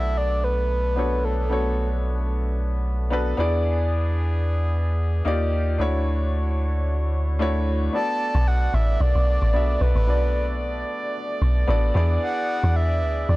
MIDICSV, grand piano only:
0, 0, Header, 1, 2, 480
1, 0, Start_track
1, 0, Tempo, 535714
1, 1350, Time_signature, 4, 2, 24, 8
1, 11976, End_track
2, 0, Start_track
2, 0, Title_t, "Grand piano"
2, 0, Program_c, 0, 0
2, 0, Control_c, 0, 64, 127
2, 0, Note_on_c, 0, 59, 71
2, 0, Note_on_c, 0, 62, 64
2, 0, Note_on_c, 0, 66, 64
2, 0, Note_on_c, 0, 69, 67
2, 0, Note_on_c, 0, 74, 79
2, 197, Note_off_c, 0, 59, 0
2, 201, Note_off_c, 0, 62, 0
2, 204, Note_off_c, 0, 66, 0
2, 207, Note_off_c, 0, 69, 0
2, 210, Note_off_c, 0, 74, 0
2, 860, Note_on_c, 0, 59, 73
2, 866, Note_on_c, 0, 62, 68
2, 872, Note_on_c, 0, 66, 69
2, 878, Note_on_c, 0, 69, 66
2, 886, Note_on_c, 0, 73, 77
2, 1258, Note_off_c, 0, 59, 0
2, 1261, Note_off_c, 0, 62, 0
2, 1265, Note_off_c, 0, 66, 0
2, 1268, Note_off_c, 0, 69, 0
2, 1271, Note_off_c, 0, 73, 0
2, 1340, Note_on_c, 0, 59, 74
2, 1347, Note_on_c, 0, 62, 65
2, 1354, Note_on_c, 0, 66, 69
2, 1360, Note_on_c, 0, 69, 64
2, 1366, Note_on_c, 0, 73, 79
2, 2118, Note_off_c, 0, 59, 0
2, 2121, Note_off_c, 0, 62, 0
2, 2125, Note_off_c, 0, 66, 0
2, 2128, Note_off_c, 0, 69, 0
2, 2131, Note_off_c, 0, 73, 0
2, 2781, Note_on_c, 0, 59, 86
2, 2788, Note_on_c, 0, 62, 78
2, 2794, Note_on_c, 0, 66, 80
2, 2801, Note_on_c, 0, 69, 83
2, 2806, Note_on_c, 0, 71, 97
2, 3008, Note_off_c, 0, 59, 0
2, 3014, Note_off_c, 0, 62, 0
2, 3022, Note_on_c, 0, 59, 93
2, 3028, Note_on_c, 0, 62, 84
2, 3032, Note_off_c, 0, 66, 0
2, 3035, Note_off_c, 0, 69, 0
2, 3035, Note_on_c, 0, 64, 82
2, 3038, Note_off_c, 0, 71, 0
2, 3041, Note_on_c, 0, 68, 84
2, 3043, Control_c, 0, 64, 0
2, 3047, Note_on_c, 0, 74, 105
2, 3210, Control_c, 0, 64, 127
2, 3799, Note_off_c, 0, 59, 0
2, 3802, Note_off_c, 0, 62, 0
2, 3805, Note_off_c, 0, 64, 0
2, 3808, Note_off_c, 0, 68, 0
2, 3811, Note_off_c, 0, 74, 0
2, 4702, Note_on_c, 0, 58, 89
2, 4707, Note_on_c, 0, 63, 81
2, 4714, Note_on_c, 0, 65, 77
2, 4720, Note_on_c, 0, 67, 81
2, 4723, Control_c, 0, 64, 0
2, 4727, Note_on_c, 0, 74, 95
2, 4887, Control_c, 0, 64, 127
2, 5099, Note_off_c, 0, 58, 0
2, 5102, Note_off_c, 0, 63, 0
2, 5106, Note_off_c, 0, 65, 0
2, 5109, Note_off_c, 0, 67, 0
2, 5112, Note_off_c, 0, 74, 0
2, 5182, Note_on_c, 0, 57, 85
2, 5188, Note_on_c, 0, 62, 80
2, 5194, Note_on_c, 0, 64, 78
2, 5201, Note_on_c, 0, 66, 78
2, 5202, Control_c, 0, 64, 0
2, 5208, Note_on_c, 0, 73, 97
2, 5358, Control_c, 0, 64, 127
2, 5959, Note_off_c, 0, 57, 0
2, 5962, Note_off_c, 0, 62, 0
2, 5965, Note_off_c, 0, 64, 0
2, 5968, Note_off_c, 0, 66, 0
2, 5972, Note_off_c, 0, 73, 0
2, 6622, Note_on_c, 0, 57, 89
2, 6629, Note_on_c, 0, 62, 76
2, 6635, Note_on_c, 0, 64, 78
2, 6642, Note_on_c, 0, 66, 80
2, 6648, Note_on_c, 0, 73, 99
2, 7020, Note_off_c, 0, 57, 0
2, 7023, Note_off_c, 0, 62, 0
2, 7026, Note_off_c, 0, 64, 0
2, 7029, Note_off_c, 0, 66, 0
2, 7033, Note_off_c, 0, 73, 0
2, 7102, Note_on_c, 0, 59, 73
2, 7109, Note_on_c, 0, 62, 67
2, 7116, Note_on_c, 0, 66, 66
2, 7122, Note_on_c, 0, 69, 69
2, 7123, Control_c, 0, 64, 0
2, 7129, Note_on_c, 0, 74, 76
2, 7261, Control_c, 0, 64, 127
2, 7879, Note_off_c, 0, 59, 0
2, 7882, Note_off_c, 0, 62, 0
2, 7886, Note_off_c, 0, 66, 0
2, 7889, Note_off_c, 0, 69, 0
2, 7892, Note_off_c, 0, 74, 0
2, 8540, Note_on_c, 0, 59, 73
2, 8547, Note_on_c, 0, 62, 65
2, 8553, Note_on_c, 0, 66, 66
2, 8559, Note_on_c, 0, 69, 66
2, 8566, Note_on_c, 0, 76, 83
2, 8938, Note_off_c, 0, 59, 0
2, 8942, Note_off_c, 0, 62, 0
2, 8945, Note_off_c, 0, 66, 0
2, 8948, Note_off_c, 0, 69, 0
2, 8952, Note_off_c, 0, 76, 0
2, 9020, Note_on_c, 0, 59, 69
2, 9027, Note_on_c, 0, 62, 68
2, 9033, Note_on_c, 0, 66, 66
2, 9040, Note_on_c, 0, 69, 65
2, 9047, Note_on_c, 0, 74, 81
2, 9798, Note_off_c, 0, 59, 0
2, 9801, Note_off_c, 0, 62, 0
2, 9804, Note_off_c, 0, 66, 0
2, 9808, Note_off_c, 0, 69, 0
2, 9811, Note_off_c, 0, 74, 0
2, 10460, Note_on_c, 0, 59, 89
2, 10466, Note_on_c, 0, 62, 84
2, 10473, Note_on_c, 0, 66, 84
2, 10479, Note_on_c, 0, 69, 82
2, 10486, Note_on_c, 0, 74, 102
2, 10686, Note_off_c, 0, 59, 0
2, 10692, Note_off_c, 0, 62, 0
2, 10699, Note_on_c, 0, 59, 92
2, 10705, Note_on_c, 0, 62, 86
2, 10711, Note_off_c, 0, 74, 0
2, 10712, Note_off_c, 0, 66, 0
2, 10713, Note_on_c, 0, 64, 84
2, 10714, Note_off_c, 0, 69, 0
2, 10719, Note_on_c, 0, 68, 84
2, 10720, Control_c, 0, 64, 0
2, 10725, Note_on_c, 0, 74, 104
2, 10863, Control_c, 0, 64, 127
2, 11477, Note_off_c, 0, 59, 0
2, 11480, Note_off_c, 0, 62, 0
2, 11484, Note_off_c, 0, 64, 0
2, 11487, Note_off_c, 0, 68, 0
2, 11490, Note_off_c, 0, 74, 0
2, 11976, End_track
0, 0, End_of_file